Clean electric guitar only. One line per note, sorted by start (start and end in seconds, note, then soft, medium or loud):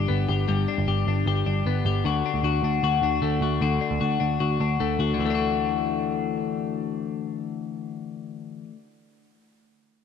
0.00 0.47 G2 medium
0.00 0.68 D4 medium
0.00 0.27 G4 medium
0.08 1.65 B3 medium
0.29 0.47 G4 medium
0.48 2.05 G2 medium
0.48 0.87 G4 medium
0.68 1.08 D4 medium
0.88 1.26 G4 medium
1.08 1.46 D4 medium
1.28 1.85 G4 medium
1.46 2.25 D4 medium
1.67 2.09 B3 medium
1.86 2.05 G4 medium
2.05 3.61 D3 medium
2.05 2.44 F#4 medium
2.26 2.64 D4 medium
2.44 2.83 F#4 medium
2.64 3.03 D4 medium
2.84 3.42 F#4 medium
3.03 3.81 D4 medium
3.22 4.80 A3 medium
3.42 3.62 F#4 medium
3.62 5.14 D3 medium
3.62 4.00 F#4 medium
3.81 4.20 D4 medium
4.01 4.40 F#4 medium
4.20 4.60 D4 soft
4.40 4.99 F#4 medium
4.61 5.30 D4 medium
4.80 5.25 A3 medium
5.00 5.34 F#4 medium
5.14 8.64 D3 medium
5.20 8.70 E3 medium
5.25 8.75 A3 medium
5.30 8.80 D4 medium
5.35 8.85 F#4 medium